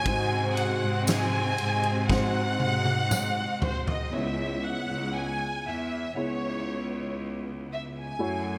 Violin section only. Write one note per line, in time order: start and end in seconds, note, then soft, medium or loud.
0.00 0.57 G#5 loud
0.56 1.08 F#5 medium
1.06 2.05 G#5 loud
2.09 3.62 F#5 loud
3.64 3.87 C5 medium
3.89 4.12 D#5 medium
4.14 4.64 E5 medium
4.65 5.15 F#5 medium
5.16 5.66 G#5 medium
5.68 6.18 E5 medium
6.18 7.15 C#5 medium
7.73 7.83 E5 medium
7.99 8.58 G#5 medium